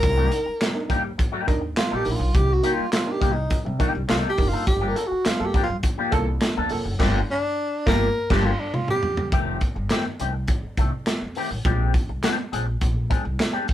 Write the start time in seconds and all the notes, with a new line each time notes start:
Already playing: A#4
0.02 C2 C3 G3, muted clean electric guitar stroke, kick, closed hi-hat
0.17 G3 A#3 D#4 G4
0.31 D#4 A#4, muted clean electric guitar stroke, closed hi-hat
0.46 muted clean electric guitar stroke, muted upright bass stroke
0.60 C3 G3, muted clean electric guitar stroke, snare, clap, closed hi-hat
0.74 D4 D#4 A#4, muted clean electric guitar stroke
0.89 D#2 G3 A#3 D#4 G4 A#4, kick, closed hi-hat
1.04 muted clean electric guitar stroke
1.18 muted clean electric guitar stroke, kick, closed hi-hat
1.32 G3 A#3 D#4 G4
1.47 D#2 D4 D#4 A#4, muted clean electric guitar stroke, kick, closed hi-hat
1.61 muted clean electric guitar stroke
1.76 C3 G3 F4, muted clean electric guitar stroke, snare, clap, closed hi-hat
1.91 A#1 G3 A#3 D#4 A4
1.96 G4
2.05 A#1 D4 D#4 A#4, muted clean electric guitar stroke, open hi-hat
2.10 E4
2.15 F4, muted clean electric guitar stroke
2.20 B1 D#4 A#4
2.34 C2 C3 G3 G4, kick, closed hi-hat
2.53 F#4
2.63 G3 A#3 D#4 G4 A#4, closed hi-hat
2.73 F4
2.79 muted upright bass stroke
2.92 C3 G3 F4, muted clean electric guitar stroke, snare, clap, closed hi-hat
3.06 D4 D#4 A#4, muted clean electric guitar stroke
3.12 G4
3.20 C2 G3 A#3 D#4 G4 A#4, kick, closed hi-hat
3.32 D#4, muted clean electric guitar stroke
3.50 D#4 A#4, muted upright bass stroke, kick, closed hi-hat
3.65 C3 G3, muted clean electric guitar stroke
3.79 G3 A#3 D4 D#4 G4 A#4, kick, closed hi-hat
3.94 C2, muted clean electric guitar stroke
4.08 C2 C3 G3 A#3 D#4 F4 A4, snare, clap, closed hi-hat
4.29 G4
4.37 F#1 D4 D#4 A#4, muted clean electric guitar stroke, kick, open hi-hat
4.48 F4 A4
4.52 G3 A#3 D#4 A#4
4.66 G1 G2 D3 G4, muted clean electric guitar stroke, kick, closed hi-hat
4.81 F3 A#3 D4 G4
4.88 A#4
4.95 F4 A4, muted clean electric guitar stroke, closed hi-hat
5.07 F#4
5.11 muted upright bass stroke, muted clean electric guitar stroke
5.25 G2 D3 F4, muted clean electric guitar stroke, muted upright bass stroke, snare, clap, closed hi-hat
5.39 G2 A#3 F4 A4, muted clean electric guitar stroke
5.45 G4
5.54 F3 A#3 D4 F4 G4 A4, kick, closed hi-hat
5.63 F4
5.69 G2, muted clean electric guitar stroke
5.83 muted clean electric guitar stroke, kick, closed hi-hat
5.98 F3 A#3 D4 G4
6.11 C2 A#3 F4 A4, muted clean electric guitar stroke, kick, closed hi-hat
6.28 muted clean electric guitar stroke
6.41 G2 D3, muted clean electric guitar stroke, snare, clap, closed hi-hat
6.57 D2 F3 A#3 D4 A4
6.69 F1 A#3 F4 A4, muted clean electric guitar stroke, open hi-hat
6.85 F#1 F4 A4, muted clean electric guitar stroke
6.99 G1 G2 D3 F3 A#3 D4 G4, kick, snare, crash
7.31 D4
7.86 G1 F3 A#3 D4 F4 G4 A#4, kick, snare
8.30 G1 G2 D3 F3 A#3 D4 G4, kick, snare, crash
8.45 F4
8.59 D4
8.74 F4, mid tom
8.88 G4, mid tom
9.03 floor tom
9.17 floor tom
9.32 F1 D#3 A3 C4 G4, kick, closed hi-hat
9.61 kick, closed hi-hat
9.75 G1, muted clean electric guitar stroke
9.90 D#3 A3 C4 G4, snare, clap, closed hi-hat
10.05 muted clean electric guitar stroke
10.19 C2 D#3 A3 C4 G4, closed hi-hat
10.34 muted clean electric guitar stroke
10.48 muted clean electric guitar stroke, kick, closed hi-hat
10.63 muted upright bass stroke
10.77 C2 D#3 A3 C4 A4, kick, closed hi-hat
10.92 muted clean electric guitar stroke
11.06 muted clean electric guitar stroke, snare, clap, closed hi-hat
11.21 F2, muted clean electric guitar stroke
11.35 D#3 A3 C4 G4, open hi-hat
11.51 A1, muted clean electric guitar stroke
11.65 A#1 G#3 C4 D4 G4, kick, closed hi-hat
11.94 kick, closed hi-hat
12.09 C2, muted clean electric guitar stroke
12.23 G#3 C4 D4 G4, snare, clap, closed hi-hat
12.38 muted clean electric guitar stroke
12.52 A#1 G#3 C4 D4 G#4, closed hi-hat
12.66 muted clean electric guitar stroke
12.81 A#1, muted clean electric guitar stroke, kick, closed hi-hat
13.09 G#3 C4 D4 G#4, kick, closed hi-hat
13.24 C2, muted clean electric guitar stroke
13.40 muted clean electric guitar stroke, snare, clap, closed hi-hat
13.52 G#3 C4 D4 G4
13.68 muted clean electric guitar stroke, kick, open hi-hat